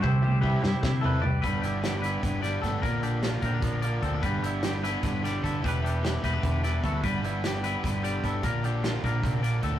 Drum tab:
HH |-------|xxxxxxx|xxxxxxx|xxxxxxx|
SD |---oo--|--o--oo|--o----|--oooo-|
T1 |-o-----|-------|-------|-------|
FT |-----oo|-------|-------|-------|
BD |o-o-o--|o---o-o|o--oo-o|o---o-o|

HH |xxxxxxx|xxxxxxx|xxxxxxx|
SD |--oo-o-|--o----|--o----|
T1 |-------|-------|-------|
FT |-------|-------|-------|
BD |o--oo-o|o---o-o|o--oo-o|